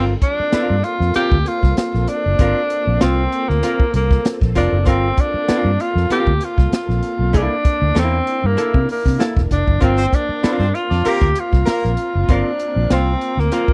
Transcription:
Already playing: fingered electric bass G1, string machine A#3 C4 F4 A4, hollow-body jazz guitar C4 F4 A#4
0.22 tenor saxophone D4, kick, closed hi-hat
0.40 muted fingered electric bass stroke
0.52 hollow-body jazz guitar C4 F4 A#4, muted fingered electric bass stroke, snare, closed hi-hat
0.70 fingered electric bass G2
0.84 tenor saxophone F4, closed hi-hat
1.00 fingered electric bass F2, snare
1.14 hollow-body jazz guitar C4 F4 A#4, tenor saxophone G4, muted fingered electric bass stroke, closed hi-hat
1.32 fingered electric bass D2, kick
1.46 tenor saxophone F4, closed hi-hat
1.63 fingered electric bass C2, kick, snare
1.77 tenor saxophone F4, snare, closed hi-hat
1.94 fingered electric bass A#1, snare
2.08 tenor saxophone D4, closed hi-hat
2.26 fingered electric bass F#1
2.39 fingered electric bass G1, hollow-body jazz guitar C4 F4 A#4, kick, closed hi-hat
2.70 closed hi-hat
2.87 fingered electric bass A#1
3.01 fingered electric bass C2, hollow-body jazz guitar C4 F4 C5, tenor saxophone C4, snare, closed hi-hat
3.32 closed hi-hat
3.49 fingered electric bass D2, tenor saxophone A#3, snare
3.63 hollow-body jazz guitar C4 F4 A#4, closed hi-hat
3.80 kick
3.94 fingered electric bass C2, tenor saxophone A#3, closed hi-hat
4.11 kick, snare
4.25 snare, closed hi-hat
4.41 fingered electric bass A#1, kick, snare
4.55 fingered electric bass F1, hollow-body jazz guitar C4 F4 A#4, tenor saxophone D4, kick, closed hi-hat
4.72 fingered electric bass F#1
4.85 fingered electric bass G1, hollow-body jazz guitar C4 F4 A#4, tenor saxophone C4, kick, closed hi-hat
5.17 tenor saxophone D4, kick, closed hi-hat
5.34 muted fingered electric bass stroke
5.48 hollow-body jazz guitar C4 F4 A#4, muted fingered electric bass stroke, snare, closed hi-hat
5.65 fingered electric bass G2
5.80 tenor saxophone F4, closed hi-hat
5.95 fingered electric bass F2, snare
6.10 hollow-body jazz guitar C4 F4 A#4, tenor saxophone G4, muted fingered electric bass stroke, closed hi-hat
6.26 fingered electric bass D2, kick
6.41 tenor saxophone F4, closed hi-hat
6.58 fingered electric bass C2, kick, snare
6.72 tenor saxophone F4, muted fingered electric bass stroke, snare, closed hi-hat
6.89 fingered electric bass A#1, snare
7.03 closed hi-hat
7.19 fingered electric bass B1
7.33 fingered electric bass C2, string machine A#3 D4 E4 A#4, hollow-body jazz guitar A#3 E4 A4, kick, closed hi-hat
7.38 tenor saxophone D4
7.65 kick, closed hi-hat
7.82 fingered electric bass D2
7.95 fingered electric bass E2, hollow-body jazz guitar A#3 E4 A#4, snare, closed hi-hat
7.99 tenor saxophone C4
8.27 closed hi-hat
8.44 fingered electric bass G2, tenor saxophone A#3
8.57 hollow-body jazz guitar A#3 E4 A4, closed hi-hat
8.74 fingered electric bass C3, kick
8.89 tenor saxophone A#3, open hi-hat
9.06 fingered electric bass C3, kick, snare
9.19 hollow-body jazz guitar A#3 E4 A4, snare, closed hi-hat
9.36 fingered electric bass E1, kick, snare
9.51 fingered electric bass F1, tenor saxophone D4, kick, closed hi-hat
9.67 fingered electric bass F#1, kick
9.80 fingered electric bass G1, hollow-body jazz guitar C4 F4 A#4, string machine C4 F4, tenor saxophone C4, kick, closed hi-hat
9.97 horn section C4 C5
10.13 tenor saxophone D4, kick, closed hi-hat
10.29 horn section D4 D5, muted fingered electric bass stroke
10.43 hollow-body jazz guitar C4 F4 A#4, horn section C4 C5, muted fingered electric bass stroke, snare, closed hi-hat
10.59 fingered electric bass G2, horn section C4 C5
10.75 tenor saxophone F4, closed hi-hat
10.91 fingered electric bass F2, horn section D4 D5, snare
11.05 horn section A#3 A#4, hollow-body jazz guitar C4 F4 A#4, tenor saxophone G4, muted fingered electric bass stroke, closed hi-hat
11.21 fingered electric bass D2, kick
11.35 tenor saxophone F4, closed hi-hat
11.53 fingered electric bass C2, kick, snare
11.66 horn section A#3 A#4, tenor saxophone F4, snare, closed hi-hat
11.84 fingered electric bass A#1, snare
11.97 closed hi-hat
12.15 fingered electric bass F#1
12.28 fingered electric bass G1, hollow-body jazz guitar C4 F4 A#4, tenor saxophone D4, kick, closed hi-hat
12.59 closed hi-hat
12.76 fingered electric bass A#1
12.90 fingered electric bass C2, hollow-body jazz guitar C4 F4 C5, tenor saxophone C4, snare, closed hi-hat
13.21 closed hi-hat
13.37 fingered electric bass D2, tenor saxophone A#3, snare
13.52 hollow-body jazz guitar C4 F4 A#4, closed hi-hat
13.68 kick

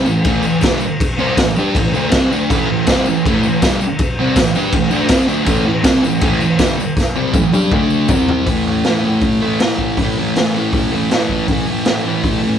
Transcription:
0.05 distorted electric guitar A2 E3, tambourine
0.24 distorted electric guitar A2 E3 A3, kick, crash
0.43 distorted electric guitar A2 E3, tambourine
0.61 distorted electric guitar G2 D3 G3, kick, snare, tambourine, crash
0.80 muted distorted electric guitar stroke, tambourine
1.00 kick, tambourine, crash
1.18 distorted electric guitar C3 G3 C4, tambourine
1.37 distorted electric guitar A2 E3, kick, snare, tambourine, crash
1.56 distorted electric guitar G3 D4 G4, tambourine
1.75 distorted electric guitar A2 E3, kick, crash
1.94 distorted electric guitar D3 A3 D4, tambourine
2.11 distorted electric guitar C3 G3 C4, kick, snare, tambourine, crash
2.31 distorted electric guitar D3 A3 D4, tambourine
2.50 distorted electric guitar A2 E3 A3, kick, tambourine, crash
2.70 distorted electric guitar A2 E3
2.87 distorted electric guitar C3 G3 C4, kick, snare, tambourine, crash
3.06 distorted electric guitar A2 E3, tambourine
3.26 distorted electric guitar A2 E3 A3, kick, crash
3.43 distorted electric guitar A2 E3, tambourine
3.62 distorted electric guitar G2 D3 G3, kick, snare, tambourine, crash
3.81 muted distorted electric guitar stroke, tambourine
3.99 kick, tambourine, crash
4.19 distorted electric guitar C3 G3 C4
4.36 distorted electric guitar A2 E3, kick, snare, tambourine, crash
4.55 distorted electric guitar G3 D4 G4, tambourine
4.72 distorted electric guitar A2 E3, kick, crash
4.91 distorted electric guitar D3 A3 D4, tambourine
5.08 distorted electric guitar C3 G3 C4, kick, snare, tambourine, crash
5.28 distorted electric guitar D3 A3 D4, tambourine
5.45 distorted electric guitar A2 E3 A3, kick, tambourine, crash
5.65 distorted electric guitar A2 E3
5.83 distorted electric guitar C3 G3 C4, kick, snare, tambourine, crash
6.03 distorted electric guitar A2 E3, tambourine
6.21 distorted electric guitar A2 E3 A3, kick, crash
6.41 distorted electric guitar A2 E3, tambourine
6.59 distorted electric guitar G2 D3 G3, kick, snare, tambourine, crash
6.79 muted distorted electric guitar stroke, tambourine
6.97 kick, snare, tambourine
7.16 distorted electric guitar C3 G3 C4, tambourine
7.34 distorted electric guitar A2 E3, kick, high tom, tambourine
7.53 distorted electric guitar G3 D4 G4, high tom, tambourine
7.72 distorted electric guitar D3 A3 D4, kick, mid tom
7.90 tambourine
8.08 distorted electric guitar C3 G3 C4, kick, floor tom, tambourine
8.29 floor tom
8.46 distorted electric guitar A2 E3, kick, open hi-hat
8.51 distorted electric guitar A3
8.67 distorted electric guitar E3 A3
8.84 distorted electric guitar A2, snare, open hi-hat
8.89 distorted electric guitar E3 A3
9.04 distorted electric guitar A3
9.08 distorted electric guitar E3
9.21 kick, open hi-hat
9.42 distorted electric guitar A3
9.46 distorted electric guitar E3
9.60 distorted electric guitar A2 E3, snare, open hi-hat
9.64 distorted electric guitar A3
9.78 kick
9.97 distorted electric guitar A2 E3, kick, open hi-hat
10.02 distorted electric guitar A3
10.18 distorted electric guitar A3
10.22 distorted electric guitar E3
10.36 distorted electric guitar A2 E3, snare, open hi-hat
10.41 distorted electric guitar A3
10.54 distorted electric guitar A3
10.58 distorted electric guitar E3
10.73 kick, open hi-hat
10.92 distorted electric guitar E3 A3
11.10 distorted electric guitar A2 E3, snare, open hi-hat
11.15 distorted electric guitar A3
11.29 kick
11.48 distorted electric guitar A2 E3, kick, open hi-hat
11.52 distorted electric guitar A3
11.67 distorted electric guitar A3
11.71 distorted electric guitar E3
11.85 distorted electric guitar A2 E3, snare, open hi-hat
11.89 distorted electric guitar A3
12.04 distorted electric guitar A3
12.08 distorted electric guitar E3
12.24 kick, open hi-hat
12.44 distorted electric guitar A3
12.48 distorted electric guitar E3

